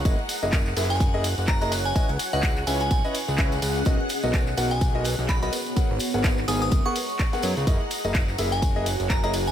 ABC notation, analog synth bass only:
X:1
M:4/4
L:1/16
Q:"Swing 16ths" 1/4=126
K:F#mix
V:1 name="Analog synth bass" clef=bass
F,,, z2 F,,,3 F,,,4- F,,, F,,,4- F,,, | z C,, z C,,3 C,,2 B,,, z2 C,,3 C,,2 | B,,, z2 B,,,3 B,,,4- B,,, B,,,3 z2 | z G,,, z G,,,3 G,,,2 F,,, z4 z F,, C,, |
F,,, z2 F,,,3 F,,,4- F,,, F,,,4- F,,, |]